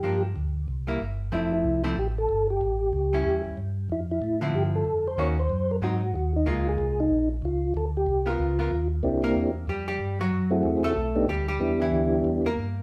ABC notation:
X:1
M:4/4
L:1/8
Q:"Swing" 1/4=187
K:Cmix
V:1 name="Tonewheel organ"
G z6 z | E E2 z G A2 G- | G4- G z3 | E E2 z G A2 c |
_d c2 B _G2 G _E | F _A2 _E2 z F2 | A G2 F4 z | [B,CDEG]3 z4 z |
z [A,CE^F_A]3 z [=A,=B,D^DG] z2 | [G,=B,DEG]4- [G,B,DEG] z3 |]
V:2 name="Hollow-body jazz guitar"
[F,B,D] z4 [G,B,E] z2 | [F,A,CE]3 [F,A,CE] z4 | z3 [G,^CE]3 z2 | z3 [D,F,CE]3 z2 |
[_E,B,_D_G] z3 [_G,C_E] z3 | [_A,B,F]4- [A,B,F] z3 | z3 [=B,F_B]2 [_CFB] z2 | z [B,B]3 [G,G] [G,G]2 [^F,^F]- |
[^F,^F]2 z [A,A]3 [G,G] [G,G]- | [G,G] [E,E]3 z [B,B]3 |]
V:3 name="Tonewheel organ" clef=bass
G,,2 D,,2 C,,2 G,,,2 | F,,,2 C,,2 A,,,2 G,,,2 | A,,,2 ^C,,2 E,, E,, G,,2 | F,,2 A,,2 G,,2 F,,2 |
_E,,2 _G,,2 _A,,2 E,,2 | _D,,2 C,,2 B,,,2 D,,2 | D,,2 C,,2 _D,,2 _E,,2 | C,,2 E,,2 F,,2 G,,2 |
^F,,2 E,,2 =B,,,2 D,,2 | E,,2 D,,2 E,,2 G,,2 |]